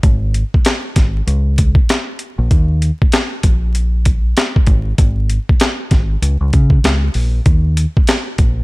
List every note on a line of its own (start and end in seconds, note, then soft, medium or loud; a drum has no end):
0.03 0.42 G#1 loud
0.03 kick loud
0.03 closed hi-hat medium
0.34 closed hi-hat medium
0.54 kick medium
0.65 snare loud
0.65 clap medium
0.65 closed hi-hat loud
0.96 1.21 G#1 medium
0.96 kick loud
0.96 snare soft
0.96 closed hi-hat medium
1.27 1.75 C#2 loud
1.27 closed hi-hat medium
1.58 kick medium
1.58 closed hi-hat medium
1.75 kick medium
1.89 snare loud
1.89 clap medium
1.89 closed hi-hat medium
2.19 closed hi-hat medium
2.38 2.48 A#1 loud
2.51 2.90 D#2 loud
2.51 kick loud
2.51 closed hi-hat medium
2.82 closed hi-hat medium
3.02 kick medium
3.12 snare loud
3.12 clap medium
3.12 closed hi-hat medium
3.43 4.32 A#1 medium
3.43 kick loud
3.43 closed hi-hat medium
3.75 closed hi-hat medium
4.05 kick medium
4.05 closed hi-hat medium
4.37 snare loud
4.37 clap medium
4.37 closed hi-hat medium
4.56 kick medium
4.67 4.91 G#1 medium
4.67 kick loud
4.67 closed hi-hat medium
4.98 5.37 G#1 loud
4.98 kick loud
4.98 closed hi-hat medium
5.30 closed hi-hat medium
5.49 kick medium
5.60 snare loud
5.60 clap medium
5.60 closed hi-hat loud
5.91 6.15 G#1 medium
5.91 kick loud
5.91 snare soft
5.91 closed hi-hat medium
6.22 6.37 C#2 loud
6.22 closed hi-hat medium
6.41 6.50 C#2 medium
6.53 6.78 C#3 loud
6.53 kick medium
6.53 closed hi-hat medium
6.70 kick loud
6.84 7.08 C#2 medium
6.84 snare loud
6.84 clap medium
6.84 closed hi-hat medium
7.14 7.39 A#1 medium
7.14 open hi-hat medium
7.46 7.85 D#2 loud
7.46 kick loud
7.46 closed hi-hat medium
7.77 closed hi-hat medium
7.97 kick medium
8.07 snare loud
8.07 clap medium
8.07 closed hi-hat medium
8.38 8.64 A#1 medium
8.38 kick loud
8.38 closed hi-hat medium